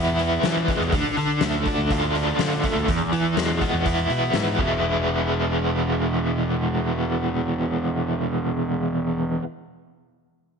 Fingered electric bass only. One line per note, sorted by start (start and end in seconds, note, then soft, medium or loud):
0.00 0.37 E2 medium
0.45 0.66 E3 medium
0.80 0.91 E2 medium
0.92 1.03 D2 medium
1.17 1.39 D3 medium
1.42 1.63 D2 medium
1.78 2.32 D2 medium
2.39 2.61 D3 medium
2.75 2.86 D2 medium
2.88 2.99 E2 medium
3.13 3.34 E3 medium
3.37 3.58 E2 medium
3.74 4.06 E2 medium
4.10 4.32 B2 medium
4.34 4.56 G#2 medium
4.59 9.37 E1 medium